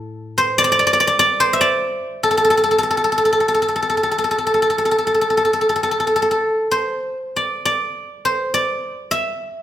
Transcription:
Already playing: A2 A4
0.38 C5
0.58 D5
0.64 D5
0.72 D5
0.79 D5
0.87 D5
0.93 D5
1.00 D5
1.07 D5
1.19 D5
1.40 C5
1.53 E5
1.61 D5
2.23 A4
2.31 A4
2.37 A4
2.45 A4
2.50 A4
2.57 A4
2.64 A4
2.71 A4
2.78 A4
2.83 A4
2.91 A4
2.97 A4
3.04 A4
3.12 A4
3.18 A4
3.25 A4
3.33 A4
3.40 A4
3.48 A4
3.54 A4
3.62 A4
3.68 A4
3.76 A4
3.82 A4
3.90 A4
3.97 A4
4.03 A4
4.11 A4
4.18 A4
4.24 A4
4.31 A4
4.38 A4
4.47 A4
4.54 A4
4.62 A4
4.70 A4
4.78 A4
4.85 A4
4.91 A4
4.98 A4
5.07 A4
5.14 A4
5.21 A4
5.30 A4
5.37 A4
5.45 A4
5.53 A4
5.61 A4
5.69 A4
5.76 A4
5.83 A4
5.91 A4
6.00 A4
6.07 A4
6.16 A4
6.22 A4
6.31 A4
6.71 C5
7.36 D5
7.65 D5
8.25 C5
8.54 D5
9.11 E5

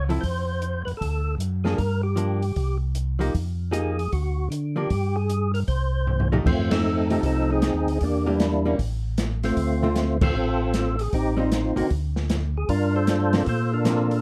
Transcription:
Already playing: C#2
0.09 F3 C4 E4 A4, open hi-hat
0.21 F2 C5, kick, open hi-hat
0.62 closed hi-hat
0.85 F2 B4, open hi-hat
0.97 D2 A4
1.01 kick, open hi-hat
1.38 F#2, closed hi-hat
1.64 F3 A#3 D4 G#4, snare
1.75 G2 G#4 A#4, kick, open hi-hat
2.03 G4
2.16 F3 A#3 D4, closed hi-hat
2.42 open hi-hat
2.56 C2, kick, open hi-hat
2.95 closed hi-hat
3.19 F3 A#3 D#4 G4, open hi-hat
3.34 F2, kick, open hi-hat
3.71 F3 A#3 D#4 G4 G#4, closed hi-hat
3.99 open hi-hat
4.12 D2 F#4, kick, open hi-hat
4.50 D3, closed hi-hat
4.76 F3 A#3 D4 G4
4.90 G2, kick, open hi-hat
5.16 G#4
5.30 closed hi-hat
5.54 A#4, open hi-hat
5.67 C2 C5, kick, open hi-hat
6.07 floor tom
6.20 floor tom
6.32 F3 A3 D#4 G4, floor tom
6.45 F2 A3 C4 F4, kick, crash
6.71 C4 D#4 A4, snare, ride
7.10 F3 A3 D#4 G4, open hi-hat
7.23 C2 C4 D#4 A4, kick, open hi-hat
7.51 C4 D#4 G#4
7.62 snare, closed hi-hat
7.73 D#2
7.87 D2, open hi-hat
8.01 E2 A#3 D4, kick, open hi-hat
8.05 G4
8.26 E3 G3 A#3 D4 E4 G4
8.40 snare, closed hi-hat
8.66 G3 A#3 C#4
8.79 A1, kick, open hi-hat
9.18 snare, closed hi-hat
9.43 A3 C4 F4, snare, open hi-hat
9.57 D2, kick, open hi-hat
9.83 D3 A3 C4 F4
9.96 snare, closed hi-hat
10.21 D3 A3 C4 F4 A4, kick, crash
10.34 A1
10.74 snare, closed hi-hat
10.99 G#4, open hi-hat
11.13 A1 C4 D#4 G4, kick, open hi-hat
11.37 G3 C4 D#4 F4
11.52 snare, closed hi-hat
11.76 A1 D3 A#3 C4 F#4, open hi-hat
11.90 D2, kick, open hi-hat
12.16 snare
12.30 snare, closed hi-hat
12.57 G#4
12.69 G2 D4 F4 A#4, kick, open hi-hat
12.96 F4 A4 C5
13.07 snare, closed hi-hat
13.33 F3 A#3 C4, snare, open hi-hat
13.46 A#2 F4 A4 C5, kick, open hi-hat
13.74 D4 F4 A#4
13.85 F3 A#3 C4, snare, closed hi-hat
14.11 open hi-hat

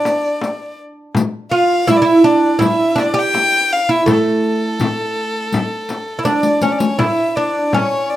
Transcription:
Already playing: D4 D5
0.05 riq, frame drum
0.41 riq, frame drum
1.15 riq, frame drum
1.51 F4 F5
1.87 E4 E5, riq, frame drum
1.97 D5
2.02 E4 E5
2.24 D4 D5
2.59 E4, riq, frame drum
2.64 E5
2.96 D4, riq, frame drum
3.00 D5
3.14 G4
3.19 G5
3.34 riq, frame drum
3.73 F5
3.89 E4 E5
4.06 A3, riq, frame drum
4.11 A4
4.44 riq
4.80 riq, frame drum
5.52 riq, frame drum
5.89 riq, frame drum
6.19 E4
6.25 D4 D5, riq, frame drum
6.43 riq
6.61 C#4 C#5, riq
6.72 D5
6.79 C#5, riq
6.99 E4 E5, frame drum
7.36 D4 D5
7.73 C#4 C#5, frame drum
8.09 D5

